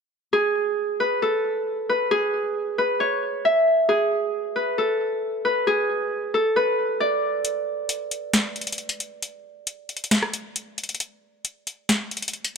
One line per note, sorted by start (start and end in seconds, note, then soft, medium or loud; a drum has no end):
0.33 1.28 G#4 medium
1.00 1.89 B4 medium
1.22 2.17 A4 medium
1.89 2.78 B4 medium
2.11 3.88 G#4 loud
2.78 4.55 B4 medium
3.00 4.91 C#5 medium
3.45 5.17 E5 medium
3.89 4.84 G#4 loud
4.56 5.44 B4 medium
4.78 5.73 A4 medium
5.45 6.56 B4 medium
5.67 6.40 G#4 loud
6.34 8.54 A4 medium
6.56 8.61 B4 medium
7.00 8.85 D5 medium
7.45 closed hi-hat medium
7.89 closed hi-hat medium
8.11 closed hi-hat medium
8.34 finger snap medium
8.34 snare loud
8.34 closed hi-hat medium
8.56 closed hi-hat soft
8.61 closed hi-hat medium
8.67 closed hi-hat medium
8.72 closed hi-hat medium
8.78 closed hi-hat soft
8.89 closed hi-hat medium
9.00 closed hi-hat medium
9.22 closed hi-hat medium
9.67 closed hi-hat medium
9.89 closed hi-hat soft
9.97 closed hi-hat medium
10.04 closed hi-hat medium
10.11 finger snap medium
10.11 snare loud
10.11 closed hi-hat medium
10.23 cross-stick loud
10.34 closed hi-hat medium
10.56 closed hi-hat medium
10.78 closed hi-hat medium
10.84 closed hi-hat medium
10.89 closed hi-hat medium
10.95 closed hi-hat medium
11.00 closed hi-hat medium
11.45 closed hi-hat medium
11.67 closed hi-hat medium
11.89 finger snap medium
11.89 snare loud
11.89 closed hi-hat medium
12.11 closed hi-hat soft
12.17 closed hi-hat medium
12.22 closed hi-hat medium
12.28 closed hi-hat medium
12.33 closed hi-hat soft
12.45 closed hi-hat medium